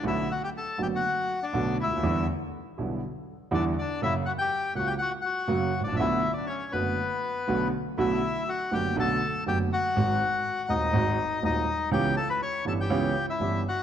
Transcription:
<<
  \new Staff \with { instrumentName = "Bandoneon" } { \time 4/4 \key b \minor \tempo 4 = 121 <e' e''>8 <fis' fis''>16 <g' g''>16 <a' a''>8 <g' g''>16 <fis' fis''>4 <d' d''>8. <e' e''>8~ | <e' e''>8 r2 r8 <d' d''>8 <d' d''>8 | <e' e''>8 <fis' fis''>16 <g' g''>8. <fis' fis''>16 <g' g''>16 <fis' fis''>8 <fis' fis''>4~ <fis' fis''>16 <d' d''>16 | <e' e''>8. <d' d''>16 <cis' cis''>8 <b b'>2 r8 |
<e' e''>4 <fis' fis''>8 <g' g''>8 <a' a''>4 <g' g''>8 <fis' fis''>8~ | <fis' fis''>4. <dis' dis''>4. <dis' dis''>4 | <g' g''>8 <a' a''>16 <b' b''>16 <cis'' cis'''>8 <a' a''>16 <g' g''>4 <e' e''>8. <fis' fis''>8 | }
  \new Staff \with { instrumentName = "Grand piano" } { \clef bass \time 4/4 \key b \minor <b,, b, d a b fis'>8 r4 <fis,, fis, d a b fis'>8 r4 <b,, b, d a b fis'>8 r32 cis,32 d,32 dis,32 | <e, d e g b e'>8 r4 <b,, b, d g b e'>8 r4 <e, d e g b e'>8 r8 | <fis, cis fis ais fis'>8 r4 <cis, cis fis ais fis'>8 r4 <fis, cis fis ais fis'>8 r32 gis,,32 a,,32 ais,,32 | <b,, b, d a b fis'>8 r4 <fis,, fis, d a b fis'>8 r4 <b,, b, d a b fis'>8 r8 |
<b,, b, d a b fis'>8 r4 <fis,, fis, d a b fis'>8 <b,, b, d a b fis'>8 r8 <fis,, fis, d a b fis'>8 r8 | <gis,, gis, dis gis bis fis'>8 r4 <dis,, dis, dis gis bis fis'>8 <gis,, gis, dis gis bis fis'>8 r8 <dis,, dis, dis gis bis fis'>8 r8 | <cis, cis e b cis' g'>8 r4 <g,, g, e b cis' g'>8 <cis, cis e b cis' g'>8 r8 <g,, g, e b cis' g'>8 r8 | }
>>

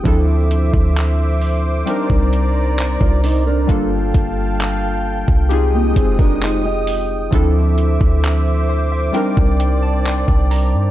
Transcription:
<<
  \new Staff \with { instrumentName = "Analog synth pad" } { \time 4/4 \key g \minor \tempo 4 = 66 << { <c'' d'''>1 | <f'' a''>2 <aes ees'''>2 | <c'' d'''>1 | } \\ { e''2 <d'' bes''>2 | g''1 | e''2 d''2 | } >> }
  \new Staff \with { instrumentName = "Nylon-string guitar" } { \time 4/4 \key g \minor r2. r16 <f' d''>16 <ees' c''>16 <d' bes'>16~ | <d' bes'>16 r2 <bes g'>16 <c' aes'>16 <d' bes'>16 <ees' c''>16 <g' ees''>8. | r1 | }
  \new Staff \with { instrumentName = "Synth keys" } { \time 4/4 \key g \minor << { r1 | r1 | r4. c''16 e''16 g''8 g''16 a''16 g''8 bes''8 | } \\ { <f c' d' e' a'>2 <g c' d' ees' bes'>2 | <g bes d' f' a'>2 <c' ees' f' g' aes'>2 | <f c' d' e' a'>2 <g c' d' ees' bes'>2 | } >> }
  \new Staff \with { instrumentName = "808-style bass" } { \clef bass \time 4/4 \key g \minor d,8. d,4~ d,16 r16 c,4 c,8. | g,,8 g,,4~ g,,16 c,8. f,,4. | d,8. d,4~ d,16 r16 c,4 c,8 g,16 | }
  \new DrumStaff \with { instrumentName = "Drums" } \drummode { \time 4/4 <hh bd>8 hh16 bd16 <hc hh>8 hho8 hh16 bd16 hh8 <hc hh>16 bd16 hho8 | <hh bd>8 <hh bd>8 <hc hh>8. bd16 hh8 <hh bd>16 bd16 <hc hh>8 hho8 | <hh bd>8 hh16 bd16 <hc hh>4 hh16 bd16 hh8 <hc hh>16 bd16 hho8 | }
>>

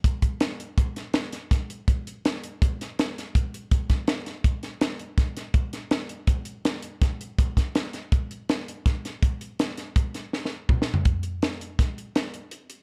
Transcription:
\new DrumStaff \with { instrumentName = "Drums" } \drummode { \time 5/4 \tempo 4 = 164 <hh bd>8 <hh bd>8 <hh sn>8 hh8 <hh bd>8 <hh sn>8 <hh sn>8 <hh sn>8 <hh bd sn>8 hh8 | <hh bd>8 hh8 <hh sn>8 hh8 <hh bd>8 <hh sn>8 <hh sn>8 <hh sn>8 <hh bd>8 hh8 | <hh bd>8 <hh bd sn>8 <hh sn>8 <hh sn>8 <hh bd>8 <hh sn>8 <hh sn>8 hh8 <hh bd sn>8 <hh sn>8 | <hh bd>8 <hh sn>8 <hh sn>8 hh8 <hh bd>8 hh8 <hh sn>8 hh8 <hh bd sn>8 hh8 |
<hh bd>8 <hh bd sn>8 <hh sn>8 <hh sn>8 <hh bd>8 hh8 <hh sn>8 hh8 <hh bd sn>8 <hh sn>8 | <hh bd>8 hh8 <hh sn>8 <hh sn>8 <hh bd>8 <hh sn>8 \tuplet 3/2 { sn8 sn8 r8 <bd toml>8 sn8 tomfh8 } | <hh bd>8 hh8 <hh sn>8 hh8 <hh bd sn>8 hh8 <hh sn>8 hh8 hh8 hh8 | }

